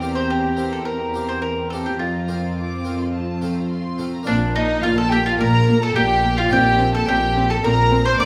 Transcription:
0.00 1.95 E2 medium
0.00 1.96 E2 soft
0.00 0.42 A#3 soft
0.00 1.96 C4 soft
0.00 0.42 C4 soft
0.00 1.99 G4 medium
0.00 0.43 G4 soft
0.00 0.13 D5 medium
0.00 1.98 A#5 medium
0.15 0.29 C5 medium
0.30 0.69 G4 medium
0.57 0.77 A#3 soft
0.57 0.78 C4 soft
0.57 0.78 G4 soft
0.73 0.85 A4 medium
0.85 1.25 A#4 medium
1.14 1.55 A#3 soft
1.14 1.56 C4 soft
1.14 1.56 G4 soft
1.29 1.41 C5 medium
1.42 1.69 A#4 medium
1.70 1.93 A#3 soft
1.70 1.93 C4 soft
1.70 1.93 G4 soft
1.70 1.84 A4 medium
1.86 1.99 G4 medium
1.99 4.03 F2 soft
1.99 4.07 F2 soft
1.99 4.03 C4 soft
1.99 4.03 F4 soft
1.99 3.66 F4 medium
1.99 2.50 A#5 soft
2.28 2.69 A#3 soft
2.28 2.70 C4 soft
2.28 2.70 F4 soft
2.57 2.97 D6 medium
2.85 3.05 A#3 soft
2.85 3.05 C4 soft
2.85 3.06 F4 soft
3.00 3.14 C6 soft
3.14 3.56 A5 soft
3.41 3.83 A3 soft
3.41 3.83 C4 soft
3.41 3.83 F4 soft
3.57 3.71 A#5 soft
3.71 4.12 C6 medium
3.98 4.19 A3 soft
3.98 4.19 C4 soft
3.98 4.19 F4 soft
4.15 4.28 A#5 soft
4.23 6.45 A#3 medium
4.23 6.46 D4 medium
4.23 4.53 D4 medium
4.23 4.35 D4 medium
4.23 6.47 F4 medium
4.27 4.77 A#1 medium
4.27 4.74 A#2 medium
4.27 4.77 A#2 medium
4.27 4.35 A#3 medium
4.27 4.36 D5 medium
4.55 4.64 A#3 medium
4.55 4.83 D#4 medium
4.55 4.82 D#4 medium
4.55 4.83 D#5 medium
4.82 5.33 A#1 medium
4.82 5.30 A#2 medium
4.82 5.33 A#2 medium
4.82 4.92 A#3 medium
4.82 4.88 F4 medium
4.82 4.96 F4 medium
4.82 4.97 F5 loud
4.97 5.11 A4 medium
4.97 5.12 A5 loud
5.11 5.19 A#3 medium
5.11 5.25 G4 medium
5.11 5.26 G5 loud
5.25 5.39 F4 medium
5.25 5.31 F5 medium
5.39 5.89 A#1 medium
5.39 5.86 A#2 medium
5.39 5.89 A#2 medium
5.39 5.48 A#3 medium
5.39 5.81 A#4 medium
5.39 5.79 A#4 medium
5.39 5.81 A#5 loud
5.69 5.77 A#3 medium
5.82 5.96 A4 medium
5.82 5.95 A4 medium
5.82 5.96 A5 medium
5.95 6.45 A#1 medium
5.95 6.45 A#2 medium
5.95 6.42 A#2 medium
5.95 6.04 A#3 medium
5.95 6.37 G4 medium
5.95 6.35 G4 medium
5.95 6.37 G5 loud
6.24 6.32 A#3 medium
6.38 6.51 F4 medium
6.38 6.52 F4 medium
6.38 6.52 F5 medium
6.49 7.01 A#1 medium
6.49 7.01 A#2 medium
6.49 6.98 A#2 medium
6.49 8.25 C4 medium
6.49 6.60 C4 medium
6.49 8.25 D#4 medium
6.49 6.94 G4 medium
6.49 6.91 G4 medium
6.49 6.93 G5 loud
6.79 6.87 C4 medium
6.94 7.08 A4 medium
6.94 7.07 A4 medium
6.94 7.07 A5 medium
7.06 7.57 A#1 medium
7.06 7.53 A#2 medium
7.06 7.57 A#2 medium
7.06 7.16 C4 medium
7.06 7.50 G4 medium
7.06 7.47 G4 medium
7.06 7.50 G5 loud
7.36 7.44 C4 medium
7.49 7.64 A4 medium
7.49 7.63 A4 medium
7.49 7.55 A5 loud
7.63 8.13 A#1 medium
7.63 8.13 A#2 medium
7.63 8.10 A#2 medium
7.63 7.73 C4 medium
7.63 8.05 A#4 medium
7.63 8.03 A#4 medium
7.63 8.05 A#5 loud
7.91 7.99 C4 medium
8.05 8.19 C5 medium
8.05 8.20 C5 medium
8.05 8.20 C6 loud
8.18 8.25 A#1 medium
8.18 8.25 A#2 medium
8.18 8.25 C4 medium
8.18 8.25 D5 medium
8.18 8.25 D5 loud
8.18 8.25 D6 loud

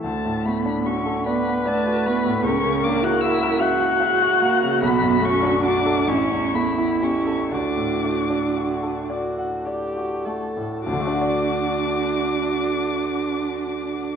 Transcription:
0.04 2.42 D2 medium
0.04 0.47 A3 medium
0.04 0.47 A5 medium
0.25 0.58 A2 soft
0.46 0.79 A3 soft
0.46 0.86 B3 medium
0.46 0.87 B5 medium
0.66 0.99 D4 medium
0.84 1.29 C#4 medium
0.84 1.19 F#4 medium
0.84 1.26 C#6 medium
1.06 1.39 A4 medium
1.26 1.65 B3 medium
1.26 2.47 B4 medium
1.26 1.59 D5 medium
1.26 1.68 B5 medium
1.48 1.80 F#5 medium
1.65 2.08 A3 medium
1.65 1.98 D5 medium
1.65 2.07 A5 medium
1.86 2.18 F#4 medium
2.06 2.38 A3 medium
2.06 2.46 B3 medium
2.06 2.44 B5 medium
2.25 2.45 A2 medium
2.43 4.78 C#2 medium
2.43 2.83 C#4 medium
2.43 3.63 A#4 medium
2.43 2.85 C#6 loud
2.64 2.96 C#3 medium
2.84 3.15 A#3 medium
2.84 3.05 D4 medium
2.84 3.05 D6 loud
3.02 3.34 E4 medium
3.02 3.25 F#4 medium
3.02 3.23 F#6 loud
3.21 3.61 E4 loud
3.21 3.54 F#4 medium
3.21 3.62 E6 loud
3.42 3.74 A#4 medium
3.60 4.81 F#4 loud
3.60 6.08 F#4 loud
3.60 3.93 E5 medium
3.60 4.83 F#6 loud
3.80 4.13 F#5 medium
4.00 4.34 E5 medium
4.21 4.55 F#4 medium
4.42 4.75 A#3 medium
4.63 4.83 C#3 medium
4.81 6.05 B1 medium
4.81 5.24 B3 loud
4.81 5.27 B5 loud
5.01 5.35 F#2 medium
5.21 5.56 A3 medium
5.21 5.62 C#4 loud
5.21 5.65 C#6 loud
5.42 5.77 D4 medium
5.62 6.09 D4 medium
5.62 5.99 F#4 medium
5.62 6.09 D6 loud
5.86 6.09 A4 medium
6.08 7.48 A1 medium
6.08 6.55 C#4 medium
6.08 7.53 E4 medium
6.08 6.56 C#6 loud
6.31 6.69 E2 medium
6.53 6.93 A3 medium
6.53 7.03 B3 medium
6.53 7.05 B5 medium
6.78 7.17 E4 medium
7.01 7.51 C#4 medium
7.01 7.42 G4 medium
7.01 7.55 C#6 medium
7.26 7.52 A4 medium
7.51 10.80 D2 medium
7.51 9.07 D4 medium
7.51 8.99 F#4 medium
7.51 9.11 D6 medium
7.77 8.19 A2 soft
8.04 8.46 A3 soft
8.30 8.73 D4 soft
8.57 9.00 F#4 soft
8.83 9.27 A4 soft
9.09 9.67 F#4 medium
9.09 9.55 D5 soft
9.38 9.84 F#5 soft
9.66 10.26 G4 medium
9.66 10.14 D5 soft
9.96 10.44 F#4 soft
10.25 10.73 A3 soft
10.25 10.84 A4 medium
10.56 10.85 A2 soft
10.84 14.16 D2 medium
10.84 14.16 D4 medium
10.84 14.16 F#4 medium
10.84 14.16 D6 loud
10.93 14.16 D3 medium
11.00 14.16 A3 medium
11.07 14.16 D4 medium
11.14 14.16 F#4 medium
11.21 14.16 D5 medium

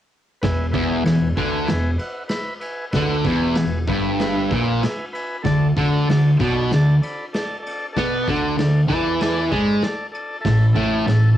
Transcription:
0.42 0.73 E1 medium
0.42 0.69 E2 medium
0.42 0.66 B4 loud
0.42 0.67 E5 loud
0.42 0.68 G#5 loud
0.42 kick loud
0.42 snare loud
0.42 ride medium
0.71 1.04 E1 medium
0.71 1.03 E2 loud
0.71 0.97 B4 medium
0.71 0.97 E5 medium
0.71 0.98 G#5 medium
0.71 kick loud
0.71 ride medium
1.03 1.35 E1 medium
1.03 1.31 E2 medium
1.03 1.28 B4 medium
1.03 1.28 E5 medium
1.03 1.29 G#5 medium
1.03 snare loud
1.03 ride loud
1.35 1.67 D2 loud
1.35 1.68 D3 loud
1.35 1.60 B4 medium
1.35 1.60 E5 medium
1.35 1.61 G#5 medium
1.35 kick loud
1.35 ride medium
1.65 1.94 E2 medium
1.65 1.91 B4 loud
1.65 1.91 E5 loud
1.65 1.91 G#5 loud
1.65 snare loud
1.65 ride loud
1.71 1.99 E1 medium
1.98 2.23 B4 medium
1.98 2.24 E5 medium
1.98 2.24 F#5 medium
1.98 ride medium
2.28 2.53 B4 medium
2.28 2.54 E5 medium
2.28 2.54 B5 loud
2.28 snare loud
2.28 ride loud
2.60 2.85 B4 medium
2.60 2.85 E5 medium
2.60 2.86 G#5 medium
2.60 ride medium
2.91 3.23 D2 medium
2.91 3.16 B4 loud
2.91 3.17 E5 medium
2.91 3.18 F#5 loud
2.91 kick loud
2.91 snare loud
2.91 ride loud
2.95 3.25 D3 loud
3.24 3.54 E1 medium
3.24 3.56 E2 loud
3.24 3.49 B4 medium
3.24 3.49 E5 medium
3.24 3.50 G#5 medium
3.24 kick loud
3.24 ride medium
3.53 3.86 E1 medium
3.53 3.79 B4 medium
3.53 3.79 E5 medium
3.53 3.80 G#5 medium
3.53 snare loud
3.53 ride loud
3.58 3.82 E2 medium
3.87 4.47 G1 loud
3.87 4.50 G2 loud
3.87 4.12 B4 medium
3.87 4.12 E5 medium
3.87 4.12 B5 medium
3.87 kick loud
3.87 ride medium
4.19 4.43 B4 loud
4.19 4.44 E5 loud
4.19 4.45 B5 loud
4.19 snare loud
4.19 ride medium
4.48 4.80 A#1 medium
4.48 4.82 A#2 loud
4.48 4.74 B4 medium
4.48 4.65 E5 medium
4.48 4.74 G#5 medium
4.48 kick loud
4.48 ride medium
4.66 4.81 F#5 medium
4.81 5.05 B4 medium
4.81 5.05 E5 medium
4.81 5.06 G#5 loud
4.81 snare loud
4.81 ride loud
5.13 5.37 B4 medium
5.13 5.37 E5 medium
5.13 5.38 G#5 medium
5.13 5.43 B5 medium
5.13 ride medium
5.43 5.74 D2 medium
5.43 5.70 D3 medium
5.43 5.68 A4 loud
5.43 5.69 D5 loud
5.43 5.69 A5 loud
5.43 kick loud
5.43 snare loud
5.43 ride medium
5.77 6.06 D2 medium
5.77 6.07 D3 loud
5.77 6.01 A4 medium
5.77 6.02 D5 medium
5.77 6.01 E5 medium
5.77 kick loud
5.77 ride medium
6.07 6.37 D2 medium
6.07 6.34 D3 medium
6.07 6.31 A4 medium
6.07 6.31 D5 medium
6.07 6.31 A5 medium
6.07 snare loud
6.07 ride loud
6.40 6.69 B1 loud
6.40 6.70 B2 loud
6.40 6.64 A4 medium
6.40 6.64 D5 medium
6.40 6.65 A5 medium
6.40 kick loud
6.40 ride medium
6.71 7.00 D2 medium
6.71 6.97 D3 medium
6.71 6.95 A4 loud
6.71 6.96 D5 loud
6.71 snare loud
6.71 ride loud
6.76 6.96 A5 loud
7.01 7.25 A4 medium
7.01 7.25 D5 medium
7.01 7.26 B5 medium
7.01 ride medium
7.33 7.56 A4 medium
7.33 7.57 D5 medium
7.33 7.57 A5 loud
7.33 snare loud
7.33 ride loud
7.60 7.85 A4 medium
7.60 7.87 D5 medium
7.60 7.87 A5 medium
7.66 ride medium
7.92 8.18 A4 loud
7.92 8.18 D5 medium
7.92 8.18 A5 loud
7.92 kick loud
7.92 ride loud
7.97 8.25 B2 medium
7.97 8.26 B3 loud
7.97 snare loud
8.21 8.47 A4 medium
8.21 8.48 D5 medium
8.21 8.49 A5 medium
8.27 8.56 D2 medium
8.27 8.56 D3 loud
8.27 kick loud
8.27 ride medium
8.56 8.87 D2 medium
8.56 8.83 D3 medium
8.56 8.81 A4 medium
8.56 8.81 D5 medium
8.56 8.82 A5 medium
8.56 snare loud
8.56 ride loud
8.88 9.48 E2 medium
8.88 9.50 E3 loud
8.88 kick loud
8.88 ride medium
8.93 9.15 A4 medium
8.93 9.15 D5 medium
8.93 9.15 A5 medium
9.21 9.45 A4 loud
9.21 9.45 D5 medium
9.21 9.45 A5 loud
9.21 snare loud
9.21 ride medium
9.52 9.81 G#2 medium
9.52 9.82 G#3 loud
9.52 9.76 A4 medium
9.52 9.76 D5 medium
9.52 9.76 B5 medium
9.52 kick loud
9.52 ride medium
9.82 10.07 A4 medium
9.82 10.07 D5 medium
9.82 10.07 A5 loud
9.82 snare loud
9.82 ride medium
10.12 10.37 A4 medium
10.12 10.37 D5 medium
10.12 10.38 A5 medium
10.12 ride medium
10.41 10.67 A4 loud
10.41 10.67 E5 loud
10.41 10.67 A5 loud
10.45 10.74 A1 medium
10.45 10.71 A2 medium
10.45 kick loud
10.45 snare loud
10.45 crash loud
10.73 11.06 A1 loud
10.73 11.06 A2 loud
10.73 10.99 A4 medium
10.73 10.99 E5 medium
10.73 10.99 A5 medium
10.73 kick loud
10.73 ride medium
11.04 11.37 A1 medium
11.04 11.33 A2 medium
11.04 11.30 A4 medium
11.04 11.30 E5 medium
11.04 11.31 A5 medium
11.04 ride loud
11.09 snare loud
11.34 11.38 A4 medium

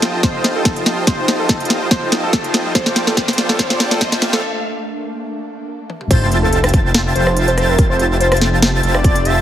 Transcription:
0.00 0.21 F1 medium
0.00 2.71 F3 medium
0.00 2.72 D#4 medium
0.00 0.22 F4 medium
0.00 2.72 G4 medium
0.00 2.71 A4 medium
0.00 0.22 C5 medium
0.00 0.22 D#5 medium
0.00 0.22 G5 medium
0.00 0.22 A5 loud
0.00 snare medium
0.00 closed hi-hat medium
0.00 riser medium
0.23 1.05 F1 medium
0.23 1.05 F4 medium
0.23 1.05 C5 medium
0.23 0.39 C5 loud
0.23 1.05 D#5 medium
0.23 1.05 G5 medium
0.23 1.05 A5 medium
0.23 kick loud
0.23 snare medium
0.23 closed hi-hat medium
0.44 snare medium
0.44 closed hi-hat medium
0.55 0.71 A4 medium
0.65 kick loud
0.65 snare medium
0.65 closed hi-hat medium
0.76 closed hi-hat medium
0.86 snare medium
0.86 closed hi-hat medium
1.07 1.89 F1 medium
1.07 1.89 F4 medium
1.07 1.89 C5 medium
1.07 1.23 C5 loud
1.07 1.89 D#5 medium
1.07 1.89 G5 medium
1.07 1.89 A5 loud
1.07 kick loud
1.07 snare medium
1.07 closed hi-hat medium
1.28 snare medium
1.28 closed hi-hat medium
1.39 1.55 A4 medium
1.49 kick medium
1.49 snare medium
1.49 closed hi-hat medium
1.60 closed hi-hat soft
1.65 closed hi-hat medium
1.70 snare medium
1.70 closed hi-hat medium
1.91 2.73 F1 loud
1.91 2.73 F4 medium
1.91 2.07 C5 loud
1.91 2.73 C5 medium
1.91 2.73 D#5 medium
1.91 2.73 G5 medium
1.91 2.73 A5 loud
1.91 kick loud
1.91 snare medium
1.91 closed hi-hat medium
2.12 snare medium
2.12 closed hi-hat medium
2.23 2.39 A4 medium
2.33 kick loud
2.33 snare medium
2.33 closed hi-hat medium
2.44 closed hi-hat medium
2.54 snare medium
2.54 closed hi-hat medium
2.75 3.15 A#1 loud
2.75 6.07 A3 medium
2.75 6.07 A#3 medium
2.75 6.07 D4 medium
2.75 3.15 F4 medium
2.75 3.15 C5 medium
2.75 2.91 C5 loud
2.75 3.15 D5 medium
2.75 3.15 G5 medium
2.75 3.15 A5 loud
2.75 kick loud
2.75 snare medium
2.75 closed hi-hat medium
2.86 snare medium
2.96 snare medium
2.96 closed hi-hat medium
3.07 3.15 A4 medium
3.07 snare medium
3.17 3.57 A#1 medium
3.17 3.57 F4 medium
3.17 3.57 C5 medium
3.17 3.33 C5 loud
3.17 3.57 D5 medium
3.17 3.57 G5 medium
3.17 3.57 A5 loud
3.17 kick loud
3.17 snare medium
3.17 closed hi-hat medium
3.28 snare medium
3.28 closed hi-hat soft
3.33 closed hi-hat medium
3.38 snare medium
3.38 closed hi-hat medium
3.49 3.58 A4 medium
3.49 snare medium
3.59 3.99 A#1 medium
3.59 3.99 F4 medium
3.59 3.75 C5 loud
3.59 3.99 C5 medium
3.59 3.99 D5 medium
3.59 3.99 G5 medium
3.59 3.99 A5 loud
3.59 kick loud
3.59 snare medium
3.59 closed hi-hat medium
3.70 snare medium
3.80 snare loud
3.80 closed hi-hat medium
3.91 3.99 A4 medium
3.91 snare medium
4.01 4.41 A#1 loud
4.01 4.41 F4 medium
4.01 4.17 C5 loud
4.01 4.41 C5 medium
4.01 4.41 D5 medium
4.01 4.41 G5 medium
4.01 4.41 A5 loud
4.01 kick loud
4.01 snare medium
4.01 closed hi-hat medium
4.12 snare medium
4.12 closed hi-hat medium
4.22 snare loud
4.22 closed hi-hat medium
4.33 4.41 A4 loud
4.33 snare medium
5.90 high tom medium
6.01 mid tom medium
6.10 7.14 F1 loud
6.10 9.41 F3 medium
6.10 9.41 C4 medium
6.10 7.13 F4 medium
6.10 9.41 A4 medium
6.10 6.27 C5 loud
6.10 7.13 C5 medium
6.10 9.41 E5 medium
6.10 7.13 E5 medium
6.10 7.13 G5 medium
6.10 7.13 A5 loud
6.10 7.13 A6 loud
6.10 kick loud
6.10 closed hi-hat medium
6.10 crash loud
6.10 sub drop medium
6.32 closed hi-hat medium
6.43 6.58 A4 medium
6.53 closed hi-hat medium
6.64 cross-stick medium
6.64 closed hi-hat medium
6.69 closed hi-hat medium
6.74 kick loud
6.74 closed hi-hat medium
6.94 snare loud
6.94 closed hi-hat medium
7.15 7.77 F1 loud
7.15 7.76 F4 loud
7.15 7.32 C5 loud
7.15 7.76 C5 medium
7.15 7.76 E5 medium
7.15 7.76 G5 medium
7.15 7.76 A5 loud
7.15 7.76 A6 loud
7.15 closed hi-hat medium
7.27 cross-stick medium
7.37 closed hi-hat medium
7.48 7.70 C5 medium
7.48 closed hi-hat medium
7.58 cross-stick medium
7.58 closed hi-hat medium
7.69 7.79 A#4 medium
7.78 8.81 F1 loud
7.78 8.81 F4 loud
7.78 8.81 C5 medium
7.78 8.81 E5 medium
7.78 8.81 G5 medium
7.78 8.81 A5 loud
7.78 8.81 A6 loud
7.78 kick loud
7.78 closed hi-hat medium
7.90 8.05 C5 medium
7.99 closed hi-hat medium
8.21 8.42 C5 loud
8.21 closed hi-hat medium
8.32 cross-stick medium
8.32 closed hi-hat medium
8.37 closed hi-hat medium
8.41 snare medium
8.41 closed hi-hat medium
8.62 snare loud
8.62 closed hi-hat medium
8.83 9.41 F1 medium
8.83 9.41 F4 medium
8.83 9.41 C5 medium
8.83 9.41 E5 medium
8.83 9.41 G5 medium
8.83 9.41 A5 loud
8.83 9.41 A6 loud
8.83 closed hi-hat medium
8.94 9.27 D5 loud
8.94 cross-stick medium
9.04 kick loud
9.04 closed hi-hat medium
9.16 closed hi-hat medium
9.25 9.37 E5 medium
9.25 closed hi-hat medium

